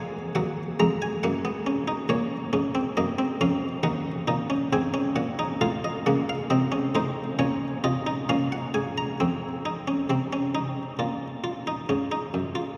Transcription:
Already playing: F2 F3 G#5
0.35 D#2 F#3 F#5
0.80 F2 G#3 A#5
1.02 G#5
1.23 F#2 A#3 F#5
1.45 B3
1.66 C#4
1.88 D#4
2.09 A#2 A#3 C#5
2.53 G#2 C#4
2.75 C4
2.97 F#2 A#3 D#5
3.19 C4
3.41 F2 C#4 F5
3.83 D#2 D#4 F#5
4.28 A#2 D#4
4.50 C#4
4.73 G#2 C4 G#5
4.94 C#4
5.16 A#2 F#5
5.39 D#4
5.61 A2 F4 F5
5.84 D#5
6.06 C#3 A#3 F#5
6.29 F5
6.50 C3 C4 D#5
6.72 C#4
6.95 A2 D#4 C5
7.39 A#2 C#4 C#5
7.84 C3 F4 D#5
8.07 D#4
8.29 A#2 C#4 F5
8.52 F#5
8.74 G#2 G#5
8.98 A#5
9.20 F2 C4
9.65 D#4
9.88 C#4
10.10 C3 C4
10.33 C#4
10.55 D#4
10.99 A#2 F4
11.44 F4
11.67 D#4
11.89 G#2 C#4
12.12 D#4
12.34 F#2
12.55 F4

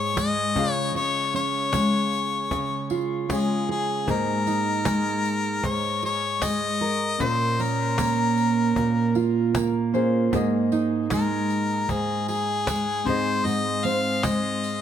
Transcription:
Already playing: G#2 G#3 A#3 D#4 G#4 C#5
0.16 G#3 D#5, cajon bass, cajon slap, tambourine
0.54 C#3 C#4 F4 G#4 F5, cajon bass, tambourine
0.73 C#5
0.95 C#3 C#5, tambourine
1.34 C#4 C#5, tambourine
1.73 G#3, cajon bass, cajon slap, tambourine
2.13 tambourine
2.51 C#3, cajon bass, tambourine
2.90 F4, tambourine
3.29 G#3 C#4 F4 G#4 C#5, cajon bass, cajon slap, tambourine
3.69 G#4
4.06 G#2 A#3 D#4 G#4 D#5, cajon bass, tambourine
4.11 A#4
4.47 D#4, tambourine
4.85 G#3, cajon bass, cajon slap, tambourine
5.25 tambourine
5.63 G#2 C#5, cajon bass
6.03 G#4 C#5, tambourine
6.42 G#3 D#5, cajon bass, cajon slap, tambourine
6.81 A#4, tambourine
7.18 A#2 A#3 C#4 F4 C5, cajon bass, tambourine
7.23 C5
7.59 C#4 A#4, tambourine
7.98 A#3, cajon bass, cajon slap, tambourine
8.38 tambourine
8.76 A#2, cajon bass
9.15 F4, tambourine
9.55 A#3, cajon bass, cajon slap, tambourine
9.93 A#3 C#4 F4 G#4 C5, tambourine
10.31 G#2 A#3 D#4 G#4, cajon bass, tambourine
10.35 D#5
10.72 D#4, tambourine
11.10 G#3 A#4, cajon bass, cajon slap, tambourine
11.50 tambourine
11.89 G#2 G#4, cajon bass, tambourine
12.28 G#4, tambourine
12.67 G#3, cajon bass, cajon slap, tambourine
13.05 G#2 C4 D#4 G#4 C5, cajon bass
13.09 D#5
13.45 G#2 D#5, tambourine
13.85 C4 F5, tambourine
14.23 G#3 D#5, cajon bass, cajon slap, tambourine
14.64 tambourine

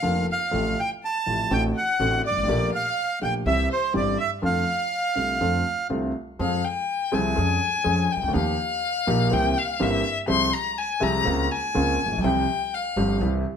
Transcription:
Already playing: F5
0.02 F1 F2 D3 F3 A#3 F4
0.31 F5
0.51 A1 A2 C3 F3 A3 F4
0.80 G5
1.04 A5
1.26 A1 A2 C3 F3 A3 F4
1.50 A1 A2 D3 A3 C4 F#4 G5
1.76 F#5
2.00 A1 A2 D3 A3 C4 F#4
2.25 D5
2.30 G1
2.37 G#1
2.43 A1
2.48 A#1 A#2 D3 A3 A#3 G4
2.73 F5
3.21 A#1 A#2 D3 A3 A#3 G4 G5
3.46 C2 C3 E3 G3 C4 G4 E5
3.72 C5
3.94 G1 G2 E3 G3 C4 G4 D5
4.18 E5
4.42 F2 D3 F3 A3 C4 F4 F5
5.15 C2 C3 D3 A3 C4 F4
5.40 F2 D3 F3 A3 C4 F4
5.89 C2 C3 D3 A3 C4 F4
6.39 F2 F3 G#3 C4 G#4 F5
6.65 G5
7.12 C2 C3 F3 G#3 C4 G#4 G#5
7.36 F2 F3 G#3 C#4 G#4
7.84 F2 F3 G#3 C#4 G#4
8.12 C2 G5
8.23 C#2
8.28 D2
8.34 D#2 D#3 F3 A#3 D#4 G4 F5
9.07 A#1 A#2 F3 A#3 D#4 G4
9.30 C2 C3 E3 A#3 C4 G4 G5
9.58 F5
9.80 G1 G2 E3 A#3 C4 G4 E5
10.27 C2 C3 F3 G#3 C4 G4 C6
10.53 A#5
10.78 G#5
11.00 C2 C3 F3 G#3 C4 G4 A#5
11.24 C#2 C#3 A#3 C4 F4
11.44 A#5
11.52 G#5
11.74 C#2 C#3 A#3 C4 F4
12.06 A1
12.11 A#1
12.17 B1
12.24 C2 C3 F3 G3 C4 G4 G5
12.75 F5
12.96 G1 G2 F3 G3 C4 G4
13.21 C2 C3 E3 G3 C4 G4

